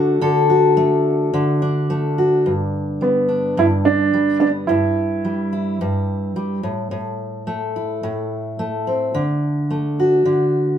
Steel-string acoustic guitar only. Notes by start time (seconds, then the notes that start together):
Already playing: D3 A3 D4 F#4 A4
0.21 D3 A4
0.50 F#4
0.77 A3
1.34 D3
1.62 D4
1.90 A3
2.18 F#4
2.46 G2
3.01 G3
3.29 D4
3.57 G2
4.13 G3
4.40 B3
4.69 G2
5.25 G3
5.53 E4
5.81 G2
6.36 G3
6.63 A2
6.91 A2
7.47 A3
7.76 E4
8.03 A2
8.59 A3
8.87 C4
9.14 D3
9.70 A3
10.00 F#4
10.25 D3